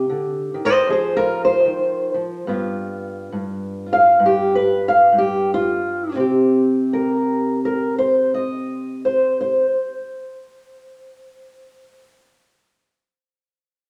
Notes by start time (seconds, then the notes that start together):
Already playing: G4
0.09 D3
0.54 D#3
0.65 C5 D#5
0.87 F3 G#4
0.92 C5
1.17 F4 A#4
1.45 C5
1.65 D#3
2.14 F3
2.47 G2 B3 F4
3.32 G2
3.86 F4
3.93 F5
4.19 G2
4.26 G4
4.55 B4
4.88 F5
5.12 G2
5.18 G4
5.54 F4
6.15 C3 C4
6.20 G4
6.93 A#4
7.65 A#4
7.98 C5
8.34 D#5
9.05 C5
9.41 C5